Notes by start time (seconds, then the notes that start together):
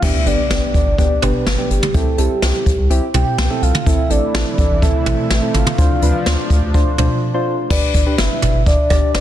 0.02 G1 B3 D4 G4 E5, kick, crash, impact
0.26 G1 B3 D4 G4 D5, closed hi-hat
0.50 G1 B3 D4 G4, snare, closed hi-hat
0.74 G1 D5, kick, closed hi-hat
0.86 G1
0.98 G1 B3 D4 G4 D5, kick, closed hi-hat
1.22 G1 B3 D4 G4 B4, closed hi-hat, mid tom
1.46 G1, snare, closed hi-hat
1.58 B3 D4 G4
1.70 G1 G4, closed hi-hat
1.83 mid tom
1.94 C2 C4 E4 G4 A4, kick, closed hi-hat
2.18 C2 C4 E4 G4 A4, closed hi-hat
2.42 C2 C4 E4 G4, snare, closed hi-hat
2.66 C2, kick, closed hi-hat
2.78 C2
2.90 C2 C4 E4 G4, closed hi-hat
3.14 C2 C4 E4 G4 G5, closed hi-hat, mid tom
3.38 C2, snare, closed hi-hat
3.50 C4 E4 A4
3.62 C2 F5, closed hi-hat
3.75 mid tom
3.86 A1 C3 E3 A3 C4 E4 A4 E5, kick, closed hi-hat
4.10 A1 C4 E4 A4 D5, closed hi-hat
4.34 A1 C4 E4 A4, snare, closed hi-hat
4.58 A1 D5, kick, closed hi-hat
4.70 A1
4.82 A1 C4 E4 A4 E5, kick, closed hi-hat
5.06 A1 C4 E4 A4, closed hi-hat, mid tom
5.30 A1, snare, closed hi-hat
5.42 C4 E4 A4
5.54 A1 F5, closed hi-hat, mid tom
5.67 mid tom
5.78 D2 F3 D4 F4 C5, kick, closed hi-hat
6.02 D2 D4 F4 B4, closed hi-hat
6.26 D2 D4 F4 C5, snare, closed hi-hat
6.50 D2, kick, closed hi-hat
6.62 D2
6.74 D2 D4 F4 C5, kick, closed hi-hat
6.98 D2 D4 F4 C5, closed hi-hat, mid tom
7.34 D4 F4 C5
7.70 G1 D4 G4 B4 D5, kick, crash
7.94 G1, kick, closed hi-hat
8.06 D4 G4 B4
8.18 G1 E5, snare, closed hi-hat
8.42 G1, closed hi-hat, mid tom
8.55 G1
8.66 G1 D5, kick, closed hi-hat
8.90 G1 D4 G4 D5, kick, closed hi-hat, cowbell
9.14 G1 D5, snare, closed hi-hat